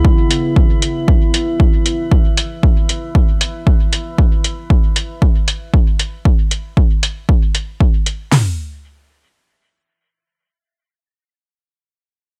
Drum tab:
HH |-x-x-x-x|-x-x-x-x|-x-x-x-x|-x-x-x-x|
SD |--------|--------|--------|--------|
FT |--------|--------|--------|--------|
BD |o-o-o-o-|o-o-o-o-|o-o-o-o-|o-o-o-o-|

HH |o-------|--------|
SD |o-------|--------|
FT |o-------|--------|
BD |--------|--------|